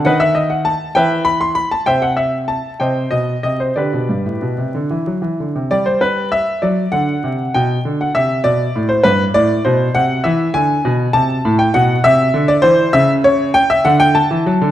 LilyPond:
<<
  \new Staff \with { instrumentName = "Grand piano" } { \time 6/8 \key g \major \tempo 4. = 66 <b' dis'' fis''>16 e''16 dis''16 fis''16 a''8 <b' e'' g''>8 b''16 c'''16 b''16 a''16 | <c'' e'' g''>16 fis''16 e''8 a''8 <c'' ees'' g''>8 ees''8 ees''16 c''16 | <g' b' d''>4. r4. | d''16 c''16 b'8 e''8 d''8 fis''4 |
g''8. fis''16 e''8 d''8. c''16 b'8 | d''8 c''8 fis''8 e''8 gis''4 | a''8. g''16 fis''8 e''8. d''16 c''8 | e''8 cis''8 g''16 e''16 fis''16 g''16 a''4 | }
  \new Staff \with { instrumentName = "Grand piano" } { \clef bass \time 6/8 \key g \major dis4. e4. | c4. c8 b,8 c8 | d16 b,16 g,16 a,16 b,16 c16 d16 e16 fis16 e16 d16 c16 | g4. fis8 d8 c8 |
b,8 d8 c8 b,8 a,8 g,8 | a,8 b,8 c8 e8 d8 b,8 | c8 a,8 b,8 c8 d8 e8 | cis4. d8. e16 fis16 d16 | }
>>